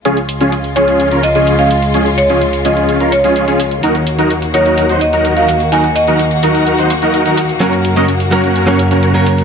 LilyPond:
<<
  \new Staff \with { instrumentName = "Marimba" } { \time 4/4 \key des \major \tempo 4 = 127 r4. des''8 r8 ees''16 ees''16 r16 f''8 r16 | r8 des''8 r8 ees''8 r8 des''4 r8 | r4. des''8 r8 ees''16 ees''16 r16 f''8 r16 | aes''8 ees''4 r2 r8 |
r1 | }
  \new Staff \with { instrumentName = "Supersaw synth" } { \time 4/4 \key des \major <des' f' aes'>16 r8 <des' f' aes'>16 r8 <des' f' aes'>8. <des' f' bes'>16 r16 <des' f' aes'>8 <des' f' aes'>16 r8 | <des' f' aes'>16 r8 <des' f' aes'>16 r8 <des' f' aes'>8. <des' f' bes'>16 r16 <des' f' aes'>8 <des' f' aes'>16 r8 | <ees' ges' bes'>16 r8 <ees' ges' bes'>16 r8 <ees' ges' bes'>8. <ees' ges' c''>16 r16 <ees' ges' bes'>8 <ees' ges' bes'>16 r8 | <ees' ges' bes'>16 r8 <ees' ges' bes'>16 r8 <ees' ges' bes'>8. <ees' ges' c''>16 r16 <ees' ges' bes'>8 <ees' ges' bes'>16 r8 |
<des' ges' bes'>16 r8 <des' ges' bes'>16 r8 <des' ges' bes'>8. <des' ges' des''>16 r16 <des' ges' bes'>8 <des' ges' bes'>16 r8 | }
  \new Staff \with { instrumentName = "Clean electric guitar" } { \time 4/4 \key des \major r1 | r1 | r1 | r1 |
<ges bes des' bes'>8. <ges bes des' ees''>16 r8 <ges bes des' bes'>16 r8 <ges bes des' bes'>4 <ges bes des' bes'>8. | }
  \new Staff \with { instrumentName = "String section" } { \clef bass \time 4/4 \key des \major << { <aes f'>1~ | <aes f'>1 | <bes ges'>1~ | <bes ges'>1~ |
<bes ges'>1 | } \\ { <des, des>1~ | <des, des>1 | <ees, ees>1~ | <ees, ees>1 |
<ges, des>1 | } >> }
  \new DrumStaff \with { instrumentName = "Drums" } \drummode { \time 4/4 hh16 hh16 hh16 hh16 hh16 hh16 hh16 hh16 hh16 hh16 hh16 hh16 hh16 hh16 hh16 hh16 | hh16 hh16 hh16 hh16 hh16 hh16 hh16 hh16 hh16 hh16 hh16 hh16 hh16 hh16 hh16 hh16 | hh16 hh16 hh16 hh16 hh16 hh16 hh16 hh16 hh16 hh16 hh16 hh16 hh16 hh16 hh16 hh16 | hh16 hh16 hh16 hh16 hh16 hh16 hh16 hh16 hh16 hh16 hh16 hh16 hh16 hh16 hh16 hh16 |
hh16 hh16 hho16 hh16 hh16 hh16 hho16 hh16 hh16 hh16 hho16 hh16 hh16 hh16 hho16 hh16 | }
>>